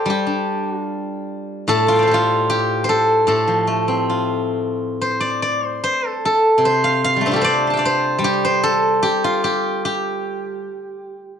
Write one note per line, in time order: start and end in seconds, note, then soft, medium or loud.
0.00 1.69 A4 soft
0.00 1.60 C5 soft
0.00 1.44 D5 soft
0.00 1.22 F5 soft
0.00 1.06 G5 soft
0.00 0.92 A5 soft
0.00 0.77 C6 soft
0.06 2.49 G3 medium
0.10 0.70 G4 medium
0.27 1.90 D4 soft
0.70 0.84 F#4 medium
0.84 1.88 F4 medium
1.68 3.26 A2 medium
1.68 2.07 A4 loud
1.87 2.14 F4 medium
1.87 3.32 A5 soft
1.92 3.63 F5 soft
1.92 3.47 G5 soft
1.99 2.84 C5 medium
1.99 3.83 D5 soft
2.07 2.49 G4 medium
2.07 2.89 A4 medium
2.14 4.09 F4 loud
2.50 4.85 G4 medium
2.84 4.82 C5 medium
2.89 3.27 A4 medium
3.27 5.77 A2 medium
3.27 5.47 A4 medium
3.47 5.15 F3 soft
3.67 5.36 A3 soft
3.88 5.57 C4 soft
4.10 5.78 F4 soft
5.01 5.65 C5 medium
5.20 5.42 D5 medium
5.42 5.65 D5 medium
5.65 5.84 C5 medium
5.84 6.08 C5 medium
6.08 6.25 A4 medium
6.25 7.36 A4 medium
6.58 9.00 C3 medium
6.65 7.41 C5 medium
6.84 7.04 F5 medium
7.04 7.77 F5 loud
7.16 7.37 G3 soft
7.21 10.53 A3 soft
7.26 10.26 C4 medium
7.26 10.06 D4 medium
7.31 9.24 F4 medium
7.31 8.24 G4 medium
7.36 8.63 A4 medium
7.41 7.85 C5 medium
7.41 7.78 D5 loud
7.67 9.15 A5 soft
7.67 8.98 C6 soft
7.73 9.44 F5 medium
7.73 9.29 G5 soft
7.79 9.63 D5 medium
7.85 8.44 C5 medium
8.19 10.65 G3 medium
8.24 9.02 G4 medium
8.45 10.43 C5 medium
8.63 10.83 A4 medium
9.03 9.44 G4 medium
9.24 11.40 F4 medium
9.44 9.85 G4 medium
9.85 11.40 G4 medium